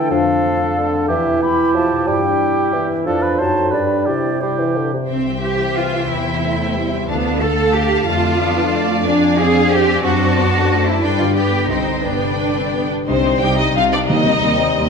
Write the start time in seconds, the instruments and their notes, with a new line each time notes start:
Already playing: harp D3 A3 D4 F4, bassoon E3, clarinet E4, flute G5
0.10 harp F2, bassoon F3, clarinet D4, oboe A4, flute F5
0.27 harp F3
0.44 harp A3
0.60 harp F4
0.77 bassoon D3, harp A3
0.94 harp F3
1.08 harp E2, bassoon E3, clarinet E4, oboe G4, flute E5
1.25 harp B2
1.42 harp B3, clarinet E4, oboe G4, flute B5
1.58 harp G4
1.75 bassoon F3, harp B3, flute A5
1.92 harp B2
2.07 harp G2, bassoon G3, clarinet E4, oboe G4, flute G5
2.23 harp G3
2.57 harp G4
2.74 bassoon E3, harp B3
2.91 harp G3
3.06 harp F2, bassoon F3, clarinet D4, oboe A4, flute D5
3.22 harp A4 D5, oboe B4
3.39 harp F#2, bassoon F#3, clarinet D#4, oboe C5, flute A5
3.56 harp A4 C5
3.71 harp G2, bassoon G3, clarinet D4, oboe B4, flute D5
3.90 harp G4 B4
4.06 harp C3, bassoon C3, clarinet E4, oboe G4, flute D5
4.25 harp G3
4.41 bassoon G3, clarinet E4, harp E4, oboe G4, flute C5
4.59 bassoon E3, harp G4
4.76 bassoon D3
4.92 bassoon C3, harp G3
5.09 double bass section C2, harp C3, cello section C4, violin section C5 E5 G5
5.26 harp G3
5.42 viola section E3, harp E4, cello section G4
5.59 harp G4
5.76 cello section F4, harp C5
5.94 harp E4
6.10 double bass section E2, harp E3, cello section E4
6.27 harp C4
6.43 viola section A3, harp E4
6.61 harp G4
6.77 viola section G3, harp C5
6.93 harp E4
7.09 double bass section D2, harp D3, viola section B3, cello section D4, violin section A4 F5 A5
7.26 harp A3
7.41 viola section A3, harp F4, cello section A4
7.60 harp A4
7.75 cello section G4, harp D5
7.92 harp F4
8.08 double bass section F2, harp F2, viola section A3, cello section F4, violin section D5
8.25 harp F3
8.40 viola section B3, harp D4
8.58 harp A4
8.73 viola section A3, harp D5
8.89 harp D4
9.05 harp F2, cello section D4, viola section D4, violin section F5 G#5
9.23 harp F3
9.38 viola section C4, harp D4, cello section G#4
9.55 harp G#4
9.71 cello section G4, harp D5
9.88 harp D4
10.04 double bass section F#2, harp F#2, cello section F#4, violin section C5 D5 A5
10.21 harp F#3
10.38 viola section B3, harp D4
10.54 harp A4
10.70 viola section A3, harp C5
10.86 harp D4, cello section E4
11.01 double bass section G2, harp G2, viola section G3, cello section D4, violin section B4 D5 G5
11.18 harp D3, cello section F4
11.35 viola section B3, harp D4, cello section G4, violin section B4 D5 G5
11.69 double bass section C2, harp C3, viola section C4, cello section D#4, violin section C5 G5
11.88 harp G4 C5
12.04 double bass section G1, harp G2, viola section B3, cello section D4, violin section B4 D5 G5
12.23 harp D3
12.39 viola section D4, harp D4
12.56 viola section C4, harp G4
12.73 viola section B3, harp B4
12.90 harp D4, viola section D4
13.07 double bass section C2, harp C3, cello section C3, french horn section G3 D#4, viola section G3 D#4, violin section C4 C5
13.24 viola section G3 D#4, harp G4
13.41 double bass section C2, cello section C3, viola section G3 D#4, violin section G4 G5, harp C5
13.58 viola section G3 D#4, violin section D#4 D#5, harp G4
13.75 double bass section C2, cello section C3, viola section G3 D#4, harp D#4, violin section F4 F5
13.92 viola section G3 D#4, violin section D4 D5, harp G4
14.08 cello section D#2, double bass section D#2, timpani D#3, harp D#3, viola section G3 C4, french horn section C4, violin section D#4 D#5
14.26 viola section G3 C4, harp G4
14.42 cello section D#2, double bass section D#2, viola section G3 C4, harp C5
14.59 viola section G3 C4, harp G4
14.75 cello section D#2, double bass section D#2, viola section G3 C4, harp C4